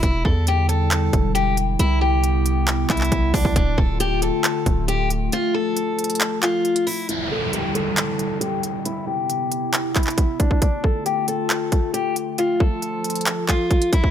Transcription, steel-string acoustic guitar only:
X:1
M:4/4
L:1/8
Q:1/4=136
K:Ephr
V:1 name="Steel-string acoustic guitar"
E A G A3 G z | E G4 E2 D | D A G A3 G z | F A4 F2 E |
E A G A3 G z | E G4 E2 D | D A G A3 G z | F A4 F2 E |]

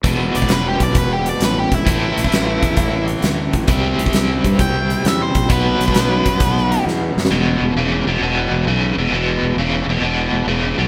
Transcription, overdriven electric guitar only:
X:1
M:4/4
L:1/8
Q:"Swing" 1/4=132
K:Em
V:1 name="Overdriven electric guitar" clef=bass
[E,,B,,E,]8 | [A,,E,A,]8 | [C,G,C]8 | [B,,F,B,]8 |
[E,,B,,]2 [E,,^C,] [E,,B,,] [E,,B,,]2 [E,,C,] [E,,B,,] | [E,,B,,]2 [E,,^C,] [E,,B,,] [E,,B,,]2 [E,,C,] [E,,B,,] |]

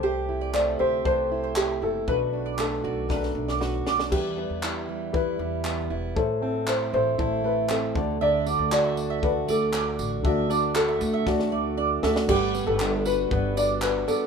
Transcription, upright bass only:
X:1
M:4/4
L:1/16
Q:1/4=117
K:G
V:1 name="Upright bass" clef=bass
C,,6 D,,2 C,,6 F,,,2 | B,,,6 B,,,4 B,,,4 B,,,2 | E,,3 E,,6- E,, E,,4 E,,,2 | A,,,6 A,,,2 A,,,6 D,,2- |
D,,3 D,,6- D,, D,,4 A,,,2 | D,,6 D,,2 D,,6 D,,2 | G,,,3 G,,,4- G,,, G,,,6 z2 |]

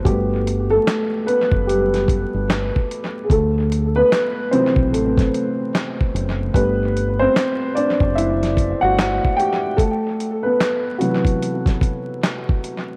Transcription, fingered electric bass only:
X:1
M:4/4
L:1/16
Q:"Swing 16ths" 1/4=74
K:G
V:1 name="Fingered electric bass" clef=bass
G,,,4 z3 F,,,4 G,,,2 z3 | D,,4 z3 B,,, A,,,2 z4 F,,,2 | G,,,4 z3 F,,,4 G,,,2 z3 | z16 |]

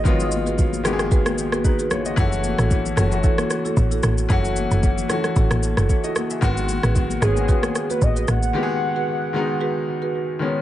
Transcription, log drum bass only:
X:1
M:4/4
L:1/16
Q:"Swing 16ths" 1/4=113
K:G#phr
V:1 name="Log drum bass" clef=bass
z16 | F,,,3 A,,,3 F,,,4 z2 A,,,2 A,,,2 | F,,,3 F,,,3 z2 A,,, A,,,2 F,,, z4 | G,,,3 A,,,3 G,,,4 z2 A,,,2 A,,,2 |
z16 |]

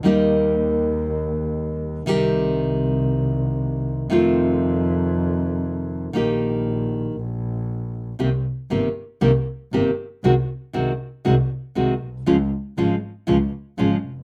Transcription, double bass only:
X:1
M:4/4
L:1/8
Q:1/4=118
K:Eb
V:1 name="Double bass" clef=bass
E,,8 | C,,8 | F,,8 | B,,,4 B,,,4 |
[K:Cm] C,, z G,,, z C,, z G,,, z | C,, z C,, z C,, z C,, =B,,, | _D,, z A,,, z D,, z A,,, F,,, |]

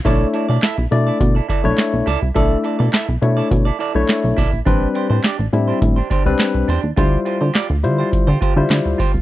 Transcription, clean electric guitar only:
X:1
M:4/4
L:1/16
Q:1/4=104
K:Bphr
V:1 name="Clean electric guitar"
[EAd] z [EAd] [EAd] [EAe] z2 [EAd] z [EAd] [EAd] z3 [EAd] z | [EAd] z [EAd] [EAd] [EAe] z2 [EAd] z [EAd] [EAd] z3 [EAd] z | [DGc] z [DGc] [DGc] [DGd] z2 [DGc] z [DGc] [DGc] z3 [DGc] z | [=FGc] z [FGc] [FGc] [FGd] z2 [FGc] z [FGc] [FGc] z3 [FGc] z |]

